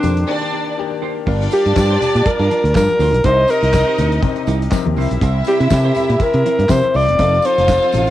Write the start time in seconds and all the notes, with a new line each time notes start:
Already playing: D#3 A#3 D4 G4
0.03 F2 D4 G4 A#4, closed hi-hat, tambourine, low conga
0.17 closed hi-hat
0.28 D#3 A#3 D4 G4 D5, muted clean electric guitar stroke
0.42 D4 G4 A#4
0.53 D4 G4 A#4
0.67 muted clean electric guitar stroke
0.78 D#3 A#3 D4 G4
0.91 muted clean electric guitar stroke
1.02 D4 G4 C5
1.16 muted clean electric guitar stroke
1.26 G1 G3 D4 F4 A#4 D5, kick, crash, tambourine, muted conga
1.42 closed hi-hat
1.51 D4 F4 G4 A#4, closed hi-hat, tambourine
1.66 G2 D4 F4 A#4, closed hi-hat
1.76 G2 G3 D4 F4 G4 A#4, kick, snare, clap, tambourine, high conga
1.90 D4 F4 C5, closed hi-hat
2.01 D4 F4 A#4, closed hi-hat, tambourine, low conga
2.15 A#2, closed hi-hat
2.25 G3 D4 F4 A#4, muted fingered electric bass stroke, muted clean electric guitar stroke, kick, closed hi-hat, tambourine, muted conga
2.39 G2 D4 F4 A#4, closed hi-hat
2.50 D4 F4 A#4, closed hi-hat, muted conga
2.64 D2, muted clean electric guitar stroke, closed hi-hat
2.74 G2 G3 D4 F4 A#4, kick, snare, clap, tambourine, high conga
2.89 muted clean electric guitar stroke, closed hi-hat, high conga
2.99 D2 D4 F4 C5, open hi-hat, tambourine
3.13 B1, muted clean electric guitar stroke, closed hi-hat
3.23 C2 C3 C4 D#4 G4 A#4 C5 D#5, kick, closed hi-hat, tambourine, muted conga
3.48 D#4 G4 A#4, closed hi-hat, tambourine
3.62 C2 D#4 G4 A#4, snare, closed hi-hat
3.73 C3 C4 D#4 A#4, kick, snare, clap, tambourine, high conga
3.87 D#4 G4 C5
3.98 D2 D#4 G4 A#4, closed hi-hat, tambourine, low conga
4.12 muted clean electric guitar stroke, closed hi-hat
4.22 C3 C4 D4 A#4, kick, closed hi-hat, tambourine, muted conga, low conga
4.29 D#4
4.36 muted clean electric guitar stroke, closed hi-hat
4.47 C2 D#4 G4 A#4, closed hi-hat, tambourine, muted conga
4.61 muted clean electric guitar stroke, closed hi-hat
4.71 C3 C4 D#4 A#4, kick, snare, clap, tambourine, high conga
4.86 D#2, muted clean electric guitar stroke, closed hi-hat, high conga
4.95 C2 C3 C4 E4 A#4 C5 E5, open hi-hat, tambourine
5.11 B1, muted clean electric guitar stroke, closed hi-hat
5.21 C2 C4 E4 A#4, kick, closed hi-hat, tambourine, muted conga
5.45 C4 E4 G4 A#4, closed hi-hat, tambourine
5.60 C3 C4 E4 A#4, closed hi-hat
5.70 C3 C4 E4 G4 A4, kick, snare, clap, tambourine, high conga
5.77 A#4
5.84 C4 E4 C5
5.95 C4 E4 A#4, closed hi-hat, tambourine, low conga
6.09 A#2, muted clean electric guitar stroke, closed hi-hat
6.18 C3 C4 E4 A#4, muted fingered electric bass stroke, kick, closed hi-hat, tambourine, muted conga
6.22 A#4
6.33 C3, muted clean electric guitar stroke, closed hi-hat
6.45 C4 E4 A#4, closed hi-hat, muted conga
6.59 G2, closed hi-hat
6.69 C3 C4 E4 A#4 C5, kick, snare, clap, tambourine, high conga
6.83 muted clean electric guitar stroke, closed hi-hat, high conga
6.94 C2 C4 E4 C5 D5, open hi-hat, tambourine
7.08 E1, muted clean electric guitar stroke, closed hi-hat
7.17 F1 F3 C4 D#4 F4 A4 F5, kick, closed hi-hat, tambourine
7.34 closed hi-hat
7.42 C4 D#4 C5, closed hi-hat, tambourine
7.46 A4
7.58 F1 C4 D#4 A4, snare, closed hi-hat
7.66 F3 C4 D#4 A4, kick, snare, clap, tambourine, high conga
7.83 C4 D#4 C5, closed hi-hat
7.93 A1 C4 D#4 A4, closed hi-hat, tambourine, low conga